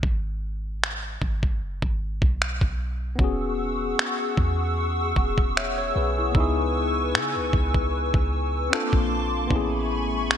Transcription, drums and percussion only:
0.03 kick
0.84 finger snap
1.22 kick
1.43 kick
1.82 kick
2.22 kick
2.42 finger snap
2.61 kick
3.19 kick
3.99 finger snap
4.37 kick
5.16 kick
5.38 kick
5.57 finger snap
6.35 kick
7.15 finger snap
7.53 kick
7.74 kick
8.14 kick
8.73 finger snap
8.93 kick
9.51 kick
10.31 finger snap

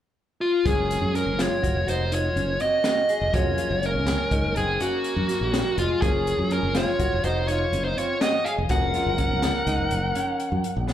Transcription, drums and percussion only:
0.66 kick, closed hi-hat
0.91 snare, closed hi-hat
1.15 snare, closed hi-hat
1.39 snare, closed hi-hat
1.64 kick, closed hi-hat
1.88 closed hi-hat
2.12 closed hi-hat
2.37 closed hi-hat
2.60 closed hi-hat
2.84 snare, closed hi-hat
3.09 closed hi-hat
3.34 kick, closed hi-hat
3.58 closed hi-hat
3.83 closed hi-hat
4.07 snare, closed hi-hat
4.31 kick, closed hi-hat
4.56 closed hi-hat
4.80 closed hi-hat
5.04 closed hi-hat
5.29 snare, closed hi-hat
5.54 snare, closed hi-hat
5.78 closed hi-hat
6.02 kick, closed hi-hat
6.27 closed hi-hat
6.51 closed hi-hat
6.75 snare, closed hi-hat
6.99 kick, closed hi-hat
7.24 closed hi-hat
7.48 closed hi-hat
7.73 closed hi-hat
7.98 closed hi-hat
8.21 snare, closed hi-hat
8.46 closed hi-hat
8.69 kick, closed hi-hat
8.94 snare, closed hi-hat
9.18 kick, closed hi-hat
9.42 snare, closed hi-hat
9.67 snare, closed hi-hat
9.91 closed hi-hat
10.15 closed hi-hat
10.40 closed hi-hat
10.64 closed hi-hat
10.88 snare

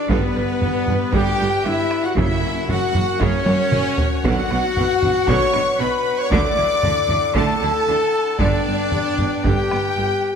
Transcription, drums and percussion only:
0.09 taiko
0.62 taiko low-mid
0.88 taiko low-mid
1.13 taiko
1.91 taiko rim
2.17 taiko
2.69 taiko low-mid
2.95 taiko low-mid
3.21 taiko
3.46 taiko high
3.72 taiko mid
3.98 taiko low
4.25 taiko
4.51 taiko rim
4.77 taiko low-mid
5.03 taiko low-mid
5.28 taiko
5.54 taiko rim
6.31 taiko
6.83 taiko low-mid
7.09 taiko low-mid
7.35 taiko
8.39 taiko
8.92 taiko low-mid
9.18 taiko low-mid
9.45 taiko
9.71 taiko rim

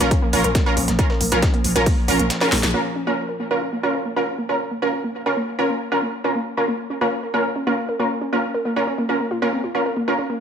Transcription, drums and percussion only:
0.01 closed hi-hat
0.11 kick, closed hi-hat
0.33 closed hi-hat, open hi-hat
0.44 closed hi-hat
0.55 kick, snare, closed hi-hat
0.77 closed hi-hat, open hi-hat
0.88 snare, closed hi-hat
0.99 kick, closed hi-hat
1.10 snare
1.21 closed hi-hat, open hi-hat
1.32 closed hi-hat
1.42 kick, snare, closed hi-hat
1.54 closed hi-hat
1.64 closed hi-hat, open hi-hat
1.76 closed hi-hat
1.86 kick, closed hi-hat, open hi-hat
2.08 open hi-hat
2.19 closed hi-hat
2.30 snare, closed hi-hat
2.41 snare, closed hi-hat
2.52 snare, closed hi-hat, open hi-hat
2.63 snare, closed hi-hat
2.74 crash

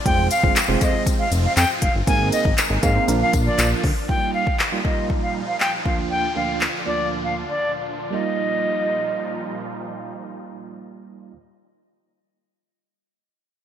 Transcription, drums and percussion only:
0.06 kick, closed hi-hat
0.31 closed hi-hat, tambourine
0.43 kick
0.56 clap, closed hi-hat, tambourine
0.81 kick, closed hi-hat, tambourine
1.06 kick, closed hi-hat, tambourine
1.32 closed hi-hat, tambourine
1.57 clap, closed hi-hat, tambourine
1.82 kick, closed hi-hat
2.07 kick, closed hi-hat, tambourine
2.32 closed hi-hat, tambourine
2.45 kick
2.58 clap, closed hi-hat, tambourine
2.83 kick, closed hi-hat, tambourine
3.08 closed hi-hat, tambourine
3.33 kick, closed hi-hat, tambourine
3.59 clap, closed hi-hat, tambourine
3.84 kick, open hi-hat
4.09 kick
4.47 kick
4.59 clap
4.85 kick
5.10 kick
5.60 clap
5.86 kick
6.61 clap

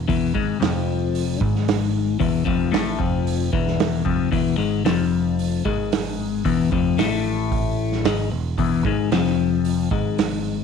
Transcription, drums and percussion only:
0.09 kick, open hi-hat
0.35 kick
0.62 snare, open hi-hat
1.15 open hi-hat
1.41 kick
1.55 snare
1.68 snare, open hi-hat
2.21 kick, open hi-hat
2.47 kick
2.74 snare, open hi-hat
3.00 kick
3.27 open hi-hat
3.53 kick
3.67 snare
3.80 snare, open hi-hat
4.06 kick
4.33 kick, open hi-hat
4.86 snare, open hi-hat
5.39 open hi-hat
5.66 kick
5.92 snare, open hi-hat
6.45 kick, open hi-hat
6.72 kick
6.99 snare, open hi-hat
7.52 kick, open hi-hat
7.92 snare
8.05 snare, open hi-hat
8.58 kick, open hi-hat
8.85 kick
9.12 snare, open hi-hat
9.25 snare
9.65 open hi-hat
9.91 kick
10.18 snare, open hi-hat

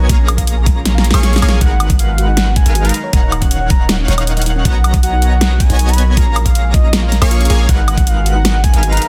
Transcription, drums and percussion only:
0.09 kick, closed hi-hat
0.28 closed hi-hat, high woodblock
0.38 kick, closed hi-hat
0.47 closed hi-hat
0.66 kick, closed hi-hat
0.85 snare, closed hi-hat
0.98 snare
1.04 closed hi-hat
1.11 snare, closed hi-hat, high woodblock
1.23 snare, closed hi-hat
1.33 snare, closed hi-hat
1.38 closed hi-hat
1.42 closed hi-hat, high woodblock
1.49 snare
1.61 kick, closed hi-hat
1.80 closed hi-hat, high woodblock
1.90 kick, closed hi-hat
1.99 closed hi-hat
2.18 closed hi-hat
2.37 snare, closed hi-hat
2.56 kick, closed hi-hat
2.66 closed hi-hat
2.75 closed hi-hat
2.85 closed hi-hat
2.89 closed hi-hat
2.94 closed hi-hat
3.13 kick, closed hi-hat
3.32 closed hi-hat, high woodblock
3.42 kick, closed hi-hat
3.51 closed hi-hat
3.70 kick, closed hi-hat
3.89 snare, closed hi-hat
4.08 snare, closed hi-hat
4.18 closed hi-hat, high woodblock
4.27 closed hi-hat
4.37 closed hi-hat
4.42 closed hi-hat
4.46 closed hi-hat
4.65 kick, closed hi-hat
4.84 closed hi-hat, high woodblock
4.94 kick, closed hi-hat
5.03 closed hi-hat
5.22 closed hi-hat
5.41 snare, closed hi-hat
5.60 kick, closed hi-hat
5.70 closed hi-hat
5.79 closed hi-hat
5.89 closed hi-hat
5.93 closed hi-hat
5.98 closed hi-hat
6.17 kick, closed hi-hat
6.36 closed hi-hat, high woodblock
6.46 kick, closed hi-hat
6.55 closed hi-hat
6.74 kick, closed hi-hat
6.93 snare, closed hi-hat
7.12 snare, closed hi-hat
7.22 closed hi-hat, high woodblock
7.31 closed hi-hat
7.41 closed hi-hat
7.45 closed hi-hat
7.50 closed hi-hat
7.69 kick, closed hi-hat
7.88 closed hi-hat, high woodblock
7.98 kick, closed hi-hat
8.07 closed hi-hat
8.26 closed hi-hat
8.45 snare, closed hi-hat
8.64 kick, closed hi-hat
8.74 closed hi-hat
8.83 closed hi-hat
8.93 closed hi-hat
8.97 closed hi-hat
9.02 closed hi-hat

